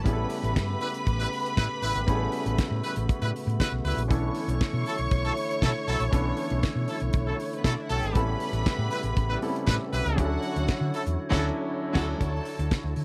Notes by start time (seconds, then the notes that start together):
Already playing: A3
0.04 A1 C#3 G3 B3 C#4 E4 G4 G#4 B4 B5, kick, closed hi-hat
0.13 A4
0.30 open hi-hat
0.43 A1, closed hi-hat
0.56 G2, kick, snare, closed hi-hat
0.81 G3 E4 B4, open hi-hat
0.94 closed hi-hat
1.07 A1, kick, closed hi-hat
1.20 G3 E4 B4
1.33 open hi-hat
1.46 closed hi-hat
1.57 A2 G3 E4 B4, kick, snare, closed hi-hat
1.82 A1 G3 E4 B4, open hi-hat
1.95 G#1, closed hi-hat
2.07 A1 G3 B3 C#4 E4 F#4 G#4, kick, closed hi-hat
2.15 A4
2.32 open hi-hat
2.46 A1, closed hi-hat
2.58 kick, snare, closed hi-hat
2.71 A2
2.83 G3 E4 B4, open hi-hat
2.96 A1, closed hi-hat
3.09 kick, closed hi-hat
3.22 A2 G3 E4 B4
3.36 open hi-hat
3.47 A2, closed hi-hat
3.60 G3 E4 B4, kick, snare, closed hi-hat
3.72 B1
3.85 C#2 G3 E4 B4, open hi-hat
3.97 A#1, closed hi-hat
4.08 B1 D3 E3 B3 C#4 D4 E4 A4 C#5 C#6, kick, closed hi-hat
4.35 open hi-hat
4.48 B1, closed hi-hat
4.61 kick, snare, closed hi-hat
4.73 B2
4.86 F#3 E4 A4, open hi-hat
4.98 B1, closed hi-hat
5.11 B1, kick, closed hi-hat
5.25 F#3 E4 A4
5.37 open hi-hat
5.51 closed hi-hat
5.62 B2 F#3 E4 A4, kick, snare, closed hi-hat
5.88 B1 F#3 E4 A4, open hi-hat
6.00 A#1, closed hi-hat
6.11 B1 E3 B3 C#4 D4 A4, kick, closed hi-hat
6.37 open hi-hat
6.50 B1, closed hi-hat
6.63 kick, snare, closed hi-hat
6.76 B2
6.88 F#3 E4 A4, open hi-hat
7.00 B1, closed hi-hat
7.13 B1, kick, closed hi-hat
7.27 F#3 E4 A4
7.40 open hi-hat
7.53 B3 B4, closed hi-hat
7.64 B2 F#3 C#4 E4 A4 C#5, kick, snare, closed hi-hat
7.73 D4 D5
7.80 E4 E5
7.89 B1 E3 C#4 F#4 A4 F#5, open hi-hat
7.98 G4 G5
8.03 G#1, closed hi-hat
8.07 A4 A5
8.13 A1 C#3 G3 A3 B3 C4 E4 G4 A4 B4 B5, kick, closed hi-hat
8.21 C#4
8.40 open hi-hat
8.53 A1, closed hi-hat
8.66 kick, snare, closed hi-hat
8.78 A2
8.91 G3 E4 B4, open hi-hat
9.03 A1, closed hi-hat
9.17 A1, kick, closed hi-hat
9.30 G3 E4 B4
9.42 G3 B3 C4 E4 A4, open hi-hat
9.48 C#4
9.56 closed hi-hat
9.67 A2 G3 E4 B4, kick, snare, closed hi-hat
9.93 B1 F#3 E4 B4, open hi-hat
10.06 C#2, closed hi-hat
10.16 D2 D3 F#3 C#4 D4 E4 F#4 G#4 C#5 F#5, kick, closed hi-hat
10.25 A4
10.42 open hi-hat
10.56 D2, closed hi-hat
10.68 kick, snare, closed hi-hat
10.81 D3
10.94 F#3 E4 A4, open hi-hat
11.06 E2, closed hi-hat
11.30 D2 F#3 C#4 D4 E4 F#4 A4 F#5, kick, snare, crash
11.39 A4
11.93 D2 F#3 C#4 D4 E4 F#4 A4 F#5, kick, snare, crash
12.02 A4
12.18 D2 F#3 D4 E4 A4 C#5 A5, kick, closed hi-hat
12.22 D3 F#4 C#5
12.45 open hi-hat
12.59 D2, closed hi-hat
12.71 kick, snare, closed hi-hat
12.84 D2
12.96 D3, open hi-hat